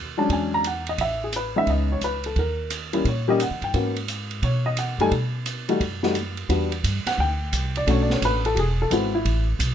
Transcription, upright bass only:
Already playing: D#2
0.29 E2
0.98 A1
1.67 C#2
2.01 C#2
2.36 D#2
3.05 A#2
3.51 C#3
3.62 G2
3.74 G#2
4.42 B2
4.98 F#2
5.11 B2
5.80 F#2
6.49 E2
6.84 G2
7.05 muted upright bass stroke
7.18 D2
7.53 C2
7.87 B1
8.22 A1
8.56 E1
8.90 G#1
9.25 A1
9.59 B1

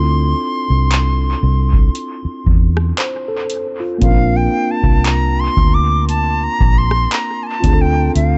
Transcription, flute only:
Already playing: C6
4.02 F5
4.37 G5
4.71 A5
5.06 A#5
5.40 C6
5.74 D6
6.09 A5
6.44 A#5
6.78 C6
7.13 A#5
7.43 G#5 A5
7.81 G5
8.16 F5

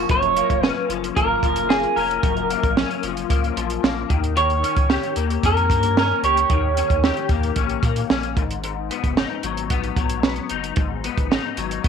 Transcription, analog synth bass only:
0.09 F#1
0.50 F1
0.89 F#1
1.17 G#1
1.43 F#1
1.97 F1
2.23 F#1
2.63 A#1
3.03 F#1
3.30 C#2
3.57 A#1
3.83 A#1
4.10 D#2
4.77 C#2
5.16 D#2
5.43 F2
5.70 G2
6.23 C#2
6.50 D#2
6.90 D#2
7.29 D#2
7.57 A#1
7.83 A#2
8.10 A#1
8.37 G#1
9.04 F#1
9.44 G#1
9.70 A#1
9.97 B1
10.51 F#1
10.77 G#1
11.18 G#1
11.57 G#1
11.84 D#2

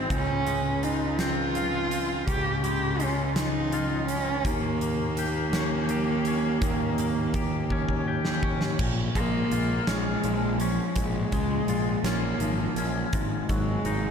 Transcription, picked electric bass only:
0.10 C#2
2.27 C#2
4.45 D#2
6.62 D#2
8.79 A#1
9.15 A#1
9.51 A#1
9.88 A#1
10.24 A#1
10.96 A#1
11.32 C#2
11.67 A#1
12.04 A#1
12.39 G#1
12.76 A#1
13.13 G#1
13.49 G#1
13.84 G#1

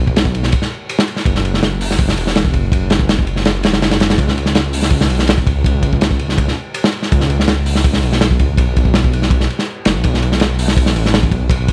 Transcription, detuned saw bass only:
Already playing: B1
1.25 F#1
2.18 E1
2.54 F#1
2.72 F#1
3.64 E1
3.73 F#1
4.18 C#2
5.10 B1
5.47 C#2
5.64 C#2
7.12 C#2
8.03 B1
8.40 C#2
8.57 B1
9.86 F#1
9.95 B1
10.05 B1
10.95 A1
11.32 B1
11.50 B1

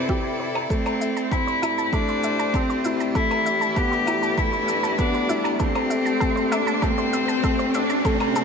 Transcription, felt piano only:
Already playing: G3 C4 E4 G4
0.09 G4
0.70 A3
1.32 C4
1.63 E4
1.93 A3
2.54 C4
2.85 E4
3.15 A3
3.77 B3
4.07 E4
4.38 A3
4.99 B3
5.30 E4
5.60 A3
6.21 A3
6.83 A3
7.44 A3
8.06 A3
8.36 A3

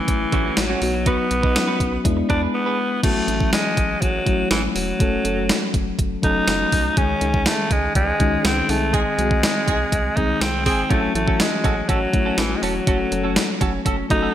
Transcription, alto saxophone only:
Already playing: E3
0.58 F#3
1.07 B3
2.30 D4
2.54 B3
3.03 A3
3.53 G#3
4.02 F#3
4.51 E3
4.75 F#3
6.24 D#4
6.98 C#4
7.47 A3
7.72 G#3
7.96 G#3
8.46 C4
8.70 A3
8.94 G#3
10.17 D#4
10.41 C4
10.66 C4
10.90 A3
11.15 A3
11.40 G#3
11.82 G#3
11.89 F#3
12.39 E3
12.57 G#3
12.63 F#3
14.11 D#4

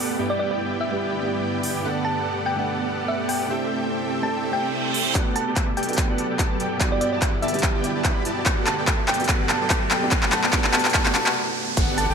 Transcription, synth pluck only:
0.30 D5
0.39 D5
0.51 D5
0.81 E5
2.05 A5
2.46 G5
3.08 E5
3.29 G5
4.23 A5
4.53 G5
5.36 A5
5.77 G5
6.92 D5
7.01 D5
7.12 D5
7.42 E5
8.67 A5
9.08 G5
9.49 A5
9.91 G5
10.32 A5
10.74 A5
10.94 A5
11.15 A5
11.98 A5

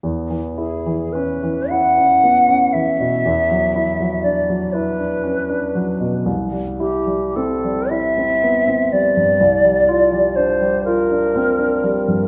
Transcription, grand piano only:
0.03 E2
0.30 E3
0.58 E4
0.86 E3
1.15 C#4
1.43 E3
1.71 E4
1.98 C#4
2.24 B3
2.49 C#4
2.75 E3
3.00 B2
3.26 E2
3.51 F#3
3.75 E4
4.00 F#3
4.25 D4
4.49 F#3
4.75 E4
4.98 D4
5.24 C#4
5.49 D4
5.75 F#3
6.00 B2
6.26 C2
6.52 G3
6.80 E4
7.07 G3
7.36 C4
7.64 G3
7.91 E4
8.18 C4
8.43 B3
8.67 C4
8.93 G3
9.17 G2
9.40 C2
9.65 G3
9.88 F4
10.12 G3
10.37 D4
10.61 G3
10.87 F4
11.10 D4
11.35 C4
11.59 D4
11.84 G3
12.08 G2

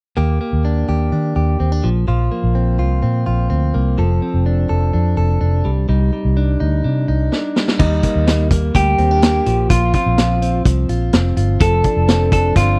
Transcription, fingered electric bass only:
0.17 D#2
0.53 D#2
0.89 D#2
1.12 D#3
1.36 D#2
1.60 D#2
1.84 A#1
2.08 A#1
2.44 A#1
2.80 C2
3.03 A#2
3.27 A#1
3.51 D2
3.75 C2
3.98 F1
4.34 F1
4.70 F1
4.94 F2
5.17 F1
5.41 F1
5.65 C2
5.89 C2
6.25 C2
6.61 D2
6.85 C3
7.09 C2
7.80 D#2
8.16 D#2
8.75 D2
8.99 D#2
9.47 A#1
9.70 A#1
10.06 A#1
10.65 C2
10.89 A#1
11.13 F1
11.37 G1
11.61 F1
11.97 F1
12.56 G1

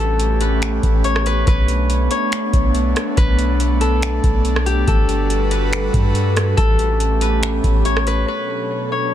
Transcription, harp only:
Already playing: G4 A4 B4
0.41 B4
1.04 C#5
1.26 B4
1.48 B4
2.11 C#5
3.17 B4
3.81 A4
4.66 G4
4.88 A4
5.51 B4
6.57 A4
7.22 B4
7.85 C#5
8.07 B4
8.28 B4
8.92 C#5

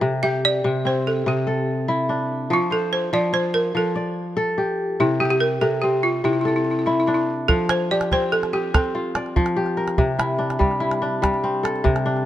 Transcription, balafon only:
0.23 E5
0.45 D5
0.87 C5
1.07 A4
1.28 G4
2.53 F4
2.72 A4
2.93 C5
3.14 D5
3.34 C5
3.54 A#4
3.77 A4
5.00 E4
5.20 G4
5.25 G4
5.30 G4
5.40 A#4
5.61 A4
5.82 G4
6.03 F4
6.25 E4
6.33 E4
6.41 E4
6.48 E4
6.56 E4
6.65 E4
6.71 E4
6.79 E4
6.86 E4
6.93 E4
7.00 E4
7.07 E4
7.14 E4
7.48 A4
7.70 C5
7.91 D5
8.13 C5
8.32 A4
8.53 G4
8.75 A4

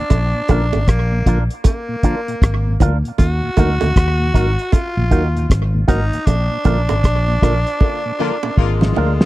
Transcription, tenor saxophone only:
Already playing: D4
0.88 A#3
1.67 A#3
3.19 F#4
4.73 F4
5.88 D#4
6.26 D4
8.59 G#3

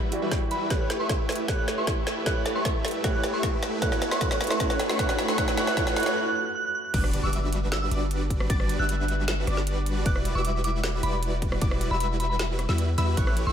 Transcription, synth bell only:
0.51 B5
0.71 F#6
0.81 F#6
1.00 C#6
1.49 F#6
1.58 F#6
1.78 C#6
2.26 F#6
2.36 F#6
2.55 C#6
3.04 F#6
3.14 F#6
3.33 C#6
3.82 F#6
3.92 F#6
4.11 C#6
4.21 F#6
4.31 F#6
4.50 C#6
4.60 F#6
4.70 F#6
4.89 C#6
4.99 F#6
5.09 F#6
5.28 C#6
5.38 F#6
5.48 F#6
5.58 F#6
5.67 F#6
5.77 F#6
5.87 F#6
5.96 F#6
6.06 F#6
6.16 F#6
6.26 F#6
6.35 F#6
6.45 F#6
6.55 F#6
6.65 F#6
6.75 F#6
6.85 F#6
6.94 F#6
7.04 F#6
7.23 D6
7.72 E6
7.82 E6
8.50 A6
8.79 F#6
10.06 F#6
10.16 F#6
10.35 D6
10.64 D6
11.03 B5
11.13 B5
11.91 B5
12.01 B5
12.20 B5
12.30 B5
12.98 B5
13.17 F#6
13.27 F#6
13.47 C#6

